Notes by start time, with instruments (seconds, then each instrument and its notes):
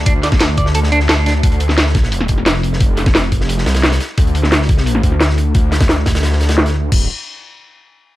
Already playing: detuned saw bass D2
0.06 clean electric guitar D4, kick, closed hi-hat
0.23 clean electric guitar D5, snare, closed hi-hat
0.32 kick, snare
0.40 detuned saw bass D2, clean electric guitar A4, snare, closed hi-hat
0.57 clean electric guitar D5, kick, closed hi-hat
0.66 snare
0.74 clean electric guitar A4, closed hi-hat
0.83 snare
0.92 detuned saw bass D2, clean electric guitar D4, closed hi-hat
1.00 snare
1.09 detuned saw bass D2, clean electric guitar A4, snare, closed hi-hat
1.17 snare
1.26 clean electric guitar D4, snare, closed hi-hat
1.43 detuned saw bass D2, kick, closed hi-hat
1.52 closed hi-hat
1.60 closed hi-hat
1.69 snare
1.78 snare, closed hi-hat
1.86 snare
1.95 kick, snare, closed hi-hat
2.03 snare
2.12 closed hi-hat
2.21 snare
2.28 detuned saw bass F1, kick, closed hi-hat
2.38 snare
2.46 snare, closed hi-hat
2.54 snare
2.63 closed hi-hat
2.73 snare
2.80 kick, closed hi-hat
2.97 snare, closed hi-hat
3.06 kick, snare
3.15 snare, closed hi-hat
3.32 kick, closed hi-hat
3.41 snare
3.49 closed hi-hat
3.58 snare
3.66 detuned saw bass C2, snare, closed hi-hat
3.74 snare, closed hi-hat
3.83 snare, closed hi-hat
3.92 snare, closed hi-hat
4.00 snare, closed hi-hat
4.18 detuned saw bass D2, kick, closed hi-hat
4.27 closed hi-hat
4.35 closed hi-hat
4.43 snare
4.52 snare, closed hi-hat
4.62 snare
4.69 kick, closed hi-hat
4.77 snare
4.86 closed hi-hat
4.95 snare
5.03 detuned saw bass D2, kick, closed hi-hat
5.12 snare
5.20 snare, closed hi-hat
5.29 snare
5.38 closed hi-hat
5.55 detuned saw bass D2, kick, closed hi-hat
5.72 snare, closed hi-hat
5.81 kick, snare, closed hi-hat
5.89 snare, closed hi-hat
6.06 detuned saw bass D2, kick, snare, closed hi-hat
6.15 snare, closed hi-hat
6.23 snare, closed hi-hat
6.32 snare
6.41 snare, closed hi-hat
6.49 snare, closed hi-hat
6.58 snare, closed hi-hat
6.66 snare, closed hi-hat
6.75 closed hi-hat
6.92 detuned saw bass D1, kick, crash